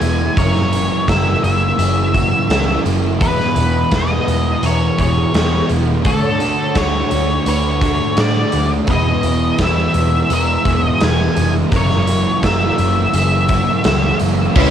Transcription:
Already playing: E2 B2 E3 G#5
0.01 E1 G#3 B3 E4, closed hi-hat
0.37 F#1 F#2 C#3 E3 F#3 A#3 E4 A#4 C#5, kick, closed hi-hat
0.56 snare
0.72 C#3 E3 F#3 A#3 E4, closed hi-hat
1.07 F#1 F#2 C#3 E3 F#3 A#3 E4 A#4 E5, kick, snare, closed hi-hat
1.43 F#1 E3 A#3 E4 E5, closed hi-hat
1.78 F#1 F#2 C#3 E3 F#3 A#3 E4 G#4, closed hi-hat
2.14 E3 A#3 E4 F#4, kick, closed hi-hat
2.49 C#2 F#2 C#3 E3 F#3 A#3 E4, snare, closed hi-hat
2.85 F#1 E3 A#3 E4, closed hi-hat
3.20 E1 E2 B2 E3 G#3 B3 E4 B4, kick, closed hi-hat
3.40 snare
3.56 E1 B2 E3 G#3 B3 E4, closed hi-hat
3.91 E1 E2 B2 E3 G#3 B3 B4 D#5, kick, snare, closed hi-hat
3.95 E4
4.27 E1 G#3 B3 E4, closed hi-hat
4.62 E1 E2 B2 E3 G#3 B3 E4 A#4 C#5, closed hi-hat
4.97 E1 G#3 B3 E4 G#4 C#5, kick, closed hi-hat
5.32 E1 E2 B2 E3 G#3 B3 E4, snare, closed hi-hat
5.68 E1 G#3 B3 E4, closed hi-hat
6.04 D2 D3 A3 D4 F#4 A4 C#5, kick, closed hi-hat
6.38 A3 D4 F#4, closed hi-hat
6.75 D2 D3 A3 D4 F#4 C#5, kick, snare, closed hi-hat
7.10 D2 A3 D4 F#4, closed hi-hat
7.45 D2 D3 A3 D4 F#4 B4 C#5, closed hi-hat
7.81 A3 D4 F#4 A4, kick, closed hi-hat
8.17 A2 D3 A3 D4 F#4 D5, snare, closed hi-hat
8.52 D2 A3 D4 F#4, closed hi-hat
8.87 E1 E2 B2 E3 G#3 B3 E4 B4 D#5, kick, closed hi-hat
9.23 E1 B2 E3 G#3 B3 E4, closed hi-hat
9.57 E1 E2 B2 E3 G#3 B3 E4 B4, kick, snare, closed hi-hat
9.63 E5
9.94 E1 G#3 B3 E4, closed hi-hat
10.29 E1 E2 B2 E3 G#3 B3 E4 A#4, closed hi-hat
10.34 E5
10.65 E1 G#3 B3 E4 G#4, kick, closed hi-hat
10.84 D#5
11.00 E1 E2 B2 E3 G#3 B3 E4 G#5, snare, closed hi-hat
11.36 F1 G#3 B3 E4, closed hi-hat
11.71 F#1 F#2 C#3 E3 F#3 A#3 E4 A#4, kick, closed hi-hat
11.76 C#5
11.91 snare
12.06 C#3 E3 F#3 A#3 E4, closed hi-hat
12.42 F#1 F#2 C#3 E3 F#3 A#3 E4 A#4 E5, kick, snare, closed hi-hat
12.78 F#1 E3 A#3 E4, closed hi-hat
13.14 F#1 F#2 C#3 E3 F#3 A#3 E4 G#4 E5, closed hi-hat
13.49 E3 A#3 E4 F#4, kick, closed hi-hat
13.84 C#2 F#2 C#3 E3 F#3 A#3 E4, snare, closed hi-hat
14.20 F#1 E3 A#3 E4, closed hi-hat
14.55 C#2 C#3 G#3 C#4 E4 B4, kick, crash

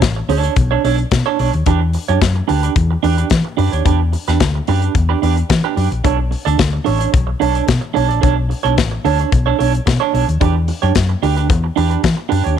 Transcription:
0.01 A1, muted clean electric guitar stroke, kick, snare, closed hi-hat
0.16 muted clean electric guitar stroke
0.29 D2 D4 A4 C#5, open hi-hat
0.43 D4 A4 C#5, closed hi-hat
0.56 B1, muted clean electric guitar stroke, kick, closed hi-hat
0.71 D4 A4 C#5
0.84 B1 D4 A4 C#5, open hi-hat
0.97 muted clean electric guitar stroke, closed hi-hat
1.11 B2, muted clean electric guitar stroke, kick, snare, closed hi-hat
1.26 D4 A4 C#5
1.39 B1 D4 A4 C#5, open hi-hat
1.53 D#2, muted clean electric guitar stroke, closed hi-hat
1.66 E2 D4 G4 B4, kick, closed hi-hat
1.81 muted clean electric guitar stroke
1.93 muted clean electric guitar stroke, open hi-hat
2.08 F#2 D4 G4 C#5, closed hi-hat
2.21 F#2, kick, snare, closed hi-hat
2.36 muted clean electric guitar stroke
2.48 D2 D4 G4 B4, open hi-hat
2.63 D4 G4 B4, closed hi-hat
2.76 E2, kick, closed hi-hat
2.91 muted clean electric guitar stroke
3.03 E2 D4 G4 B4, open hi-hat
3.18 D4 G4 B4, closed hi-hat
3.30 E3, muted clean electric guitar stroke, kick, snare, closed hi-hat
3.45 muted clean electric guitar stroke
3.57 F#2 D4 G4 B4, open hi-hat
3.72 D#2 D4 G4 C#5, closed hi-hat
3.85 E2 D4 G4 B4, kick, closed hi-hat
4.00 muted clean electric guitar stroke
4.12 muted clean electric guitar stroke, open hi-hat
4.28 E2 D4 G4 B4, snare, closed hi-hat
4.40 D2, muted clean electric guitar stroke, kick, snare, closed hi-hat
4.55 muted clean electric guitar stroke
4.67 F#2 D4 G4 B4, open hi-hat
4.82 D4 G4 B4, closed hi-hat
4.95 E2, muted clean electric guitar stroke, kick, closed hi-hat
5.09 D4 G4 B4
5.22 E2 D4 G4 B4, open hi-hat
5.37 muted clean electric guitar stroke, closed hi-hat
5.49 E3, muted clean electric guitar stroke, kick, snare, closed hi-hat
5.64 D4 G4 B4
5.76 F#2 D4 G4 B4, open hi-hat
5.91 A#1, closed hi-hat
6.04 B1 D4 A4 C#5, kick, closed hi-hat
6.18 muted clean electric guitar stroke
6.31 muted clean electric guitar stroke, open hi-hat
6.45 D2 D4 A4 D5, closed hi-hat
6.58 D2, muted clean electric guitar stroke, kick, snare, closed hi-hat
6.73 muted clean electric guitar stroke
6.84 A1 D4 A4 C#5, open hi-hat
6.99 D4 A4 C#5, closed hi-hat
7.12 B1, muted clean electric guitar stroke, kick, closed hi-hat
7.27 muted clean electric guitar stroke
7.40 B1 D4 A4 C#5, open hi-hat
7.54 D4 A4 C#5, closed hi-hat
7.67 B2, muted clean electric guitar stroke, kick, snare, closed hi-hat
7.81 muted clean electric guitar stroke
7.94 B1 D4 A4 C#5, open hi-hat
8.08 A#1 D4 A4 D5, closed hi-hat
8.21 B1 D4 A4 C#5, kick, closed hi-hat
8.36 muted clean electric guitar stroke
8.49 muted clean electric guitar stroke, open hi-hat
8.63 B1 D4 A4 C#5, closed hi-hat
8.76 A1, muted clean electric guitar stroke, kick, snare, closed hi-hat
8.91 muted clean electric guitar stroke
9.05 D2 D4 A4 C#5, open hi-hat
9.19 D4 A4 C#5, closed hi-hat
9.32 B1, muted clean electric guitar stroke, kick, closed hi-hat
9.46 D4 A4 C#5
9.59 B1 D4 A4 C#5, open hi-hat
9.73 muted clean electric guitar stroke, closed hi-hat
9.86 B2, muted clean electric guitar stroke, kick, snare, closed hi-hat
10.00 D4 A4 C#5
10.13 B1 D4 A4 C#5, open hi-hat
10.27 D#2, muted clean electric guitar stroke, closed hi-hat
10.41 E2 D4 G4 B4, kick, closed hi-hat
10.56 muted clean electric guitar stroke
10.68 muted clean electric guitar stroke, open hi-hat
10.82 F#2 D4 G4 C#5, closed hi-hat
10.95 F#2, kick, snare, closed hi-hat
11.09 muted clean electric guitar stroke
11.23 D2 D4 G4 B4, open hi-hat
11.37 D4 G4 B4, closed hi-hat
11.49 E2, muted clean electric guitar stroke, kick, closed hi-hat
11.64 muted clean electric guitar stroke
11.76 E2 D4 G4 B4, open hi-hat
11.90 D4 G4 B4, closed hi-hat
12.03 E3, muted clean electric guitar stroke, kick, snare, closed hi-hat
12.17 muted clean electric guitar stroke
12.29 F#2 D4 G4 B4, open hi-hat
12.44 D#2 D4 G4 C#5, closed hi-hat

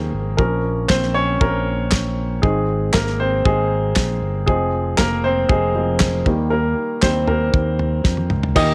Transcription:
Already playing: D#2 F3 G#3 A#3 C4 C#4 G#4 A#4 C5
0.13 G#1
0.37 A#1 F3 A#3 C#4 A#4, kick
0.88 A#1 C4 C5, kick, snare, clap
1.03 snare
1.14 C#4 C#5
1.41 A#1 A#3 A#4, kick
1.91 kick, snare, clap
2.42 G#1 D#3 G#3 C4 G#4, kick
2.93 G#1 A#3 A#4, kick, snare, clap
3.07 snare
3.20 C4 C5
3.45 G#1 G#3 G#4, kick
3.96 A#1, kick, snare, clap
4.22 G1
4.46 F1 F3 G#3 C4 G#4, kick
4.97 F1 A#3 A#4, kick, snare, clap
5.24 C4 C5
5.49 F1 G#3 G#4, kick
5.75 F3 G#3 C4
6.00 kick, snare, clap
6.26 D#2 D#3 G3 A#3, kick
6.50 A#3 A#4
7.02 D#2 D#3 G3 A#3 C4 C5, kick, snare, clap
7.28 A#3 A#4, floor tom
7.54 D#2, kick
7.79 floor tom
8.04 F2, kick, snare
8.17 high tom
8.30 C#2, mid tom
8.43 floor tom
8.55 D#2 A#2 D#3 A#3 D#4 G4 D#5, kick, crash

